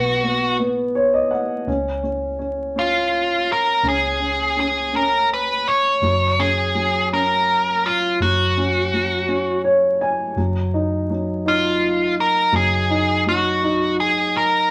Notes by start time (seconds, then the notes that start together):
Already playing: B1 B3 F#4
0.23 B3
0.59 B3
0.95 C#5
1.14 D#5
1.31 F#5
1.67 C#2 C#4
2.03 C#4
2.39 C#4
2.76 C#4 F4
3.52 A#4
3.83 C#2 C#4
3.88 G#4
4.20 C#4
4.57 C#4 G#4
4.93 C#4 A#4
5.33 B4
5.68 C#5
6.01 F#1 F#3
6.39 C#4 G#4
6.75 F#3
7.13 C#4 A#4
7.86 F4
8.20 F#1 F#3 F#4
8.57 C#4
8.94 F#3
9.28 C#4
9.64 C#5
10.01 G#5
10.36 F#1 F#3
10.74 D#4
11.10 F#3
11.46 D#4 F4
12.20 A#4
12.52 F#1 F#3 G#4
12.90 D#4
13.26 F#3 F#4
13.63 D#4
14.00 G#4
14.37 A#4